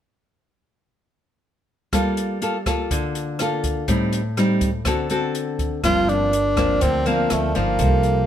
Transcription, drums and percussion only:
1.93 kick, cross-stick, closed hi-hat
2.17 closed hi-hat
2.42 closed hi-hat
2.66 kick, cross-stick, closed hi-hat
2.91 kick, closed hi-hat
3.15 closed hi-hat
3.39 cross-stick, closed hi-hat
3.64 kick, closed hi-hat
3.88 kick, closed hi-hat
4.13 closed hi-hat
4.37 cross-stick, closed hi-hat
4.61 kick, closed hi-hat
4.85 kick, cross-stick, closed hi-hat
5.10 closed hi-hat
5.35 closed hi-hat
5.59 kick, closed hi-hat
5.83 kick, cross-stick, closed hi-hat
6.09 closed hi-hat
6.33 closed hi-hat
6.57 kick, cross-stick, closed hi-hat
6.81 kick, closed hi-hat
7.06 closed hi-hat
7.30 cross-stick, closed hi-hat
7.55 closed hi-hat
7.79 kick, closed hi-hat
8.03 closed hi-hat

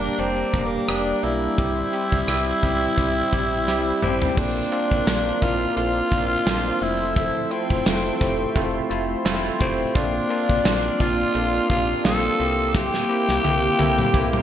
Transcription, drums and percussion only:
0.19 closed hi-hat
0.54 kick, closed hi-hat
0.89 cross-stick, closed hi-hat
1.23 closed hi-hat
1.58 kick, closed hi-hat
1.93 closed hi-hat
2.12 kick
2.28 cross-stick, closed hi-hat
2.63 kick, closed hi-hat
2.98 kick, closed hi-hat
3.33 kick, closed hi-hat
3.68 snare
4.02 mid tom
4.22 floor tom
4.37 kick, crash, cowbell
4.72 closed hi-hat
4.91 kick
5.07 snare, closed hi-hat, cowbell
5.42 kick, closed hi-hat
5.77 closed hi-hat, cowbell
6.12 kick, closed hi-hat
6.47 snare, closed hi-hat, cowbell
6.81 open hi-hat
7.16 kick, closed hi-hat, cowbell
7.51 closed hi-hat
7.70 kick
7.86 snare, closed hi-hat, cowbell
8.21 kick, closed hi-hat
8.56 kick, closed hi-hat, cowbell
8.91 closed hi-hat
9.25 snare, closed hi-hat, cowbell
9.60 kick, open hi-hat
9.95 kick, closed hi-hat, cowbell
10.30 closed hi-hat
10.49 kick
10.65 snare, closed hi-hat, cowbell
11.00 kick, closed hi-hat
11.35 closed hi-hat, cowbell
11.70 kick, closed hi-hat
12.05 snare, closed hi-hat, cowbell
12.39 open hi-hat
12.74 kick, snare, cowbell
12.94 snare
13.29 snare
13.44 high tom, cowbell
13.79 high tom
13.98 mid tom
14.14 kick, cowbell
14.33 mid tom

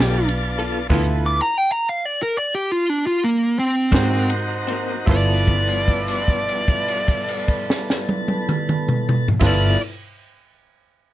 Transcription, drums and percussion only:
0.00 snare
0.29 ride
0.59 ride
0.90 kick, crash, ride
3.92 kick, snare, ride
4.30 ride
4.68 ride
5.07 kick, crash
5.48 kick, crash
5.68 crash
5.88 kick, crash
6.08 crash
6.28 kick, crash
6.49 crash
6.68 kick, crash
6.88 crash
7.08 kick, crash
7.28 crash
7.48 kick, crash
7.70 snare
7.90 snare
8.09 high tom
8.28 high tom
8.49 mid tom
8.69 mid tom
8.89 mid tom
9.09 mid tom
9.28 floor tom
9.40 kick, snare, crash

